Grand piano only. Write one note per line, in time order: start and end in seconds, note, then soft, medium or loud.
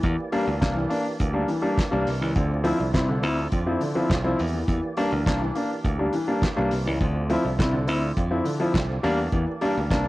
0.04 0.17 E3 medium
0.32 0.46 G3 medium
0.32 0.45 A#3 medium
0.32 0.45 D4 medium
0.47 0.53 A#3 soft
0.47 0.53 D4 soft
0.61 0.75 A#3 medium
0.61 0.75 D4 medium
0.76 0.89 E3 medium
0.89 1.03 A#3 medium
0.89 1.04 D4 medium
1.33 1.47 G3 medium
1.33 1.47 A#3 medium
1.33 1.47 D4 medium
1.49 1.62 E3 medium
1.62 1.76 G3 medium
1.62 1.76 A#3 medium
1.62 1.76 D4 medium
1.91 2.05 G3 medium
1.91 2.05 A#3 medium
1.91 2.05 D4 medium
2.21 2.34 E3 medium
2.36 2.49 D3 medium
2.64 2.78 F3 medium
2.64 2.78 C4 medium
2.64 2.78 E4 loud
2.79 2.85 C4 soft
2.79 2.85 E4 soft
2.93 3.07 C4 medium
2.93 3.07 E4 medium
3.08 3.22 D3 medium
3.22 3.36 C4 medium
3.22 3.36 E4 medium
3.66 3.80 F3 medium
3.66 3.80 C4 medium
3.66 3.80 E4 medium
3.81 3.94 D3 medium
3.95 4.08 F3 medium
3.95 4.09 C4 medium
3.95 4.09 E4 medium
4.24 4.38 F3 medium
4.24 4.38 C4 medium
4.24 4.38 E4 medium
4.54 4.67 E3 medium
4.68 4.81 E3 medium
4.97 5.10 G3 medium
4.97 5.10 A#3 medium
4.97 5.10 D4 loud
5.12 5.18 A#3 soft
5.12 5.18 D4 soft
5.26 5.39 A#3 medium
5.26 5.40 D4 medium
5.42 5.54 E3 medium
5.55 5.68 A#3 medium
5.55 5.69 D4 medium
5.99 6.12 G3 medium
5.99 6.12 A#3 medium
5.99 6.12 D4 medium
6.14 6.27 E3 medium
6.28 6.41 G3 medium
6.28 6.41 A#3 medium
6.28 6.41 D4 medium
6.56 6.70 G3 medium
6.56 6.70 A#3 medium
6.56 6.70 D4 medium
6.86 6.99 E3 medium
7.01 7.14 D3 medium
7.30 7.43 F3 medium
7.30 7.43 C4 medium
7.30 7.43 E4 medium
7.44 7.50 C4 soft
7.44 7.50 E4 soft
7.58 7.71 C4 medium
7.58 7.72 E4 medium
7.73 7.86 D3 medium
7.87 8.01 C4 medium
7.87 8.01 E4 medium
8.31 8.44 F3 medium
8.31 8.44 C4 medium
8.31 8.44 E4 medium
8.45 8.58 D3 medium
8.60 8.73 F3 medium
8.60 8.73 C4 medium
8.60 8.73 E4 medium
9.03 9.16 G3 medium
9.03 9.17 A#3 medium
9.03 9.17 D4 loud
9.32 9.46 E3 medium
9.61 9.75 G3 medium
9.61 9.75 A#3 medium
9.61 9.75 D4 medium
9.76 9.82 A#3 soft
9.76 9.82 D4 soft
9.91 10.04 A#3 medium
9.91 10.04 D4 medium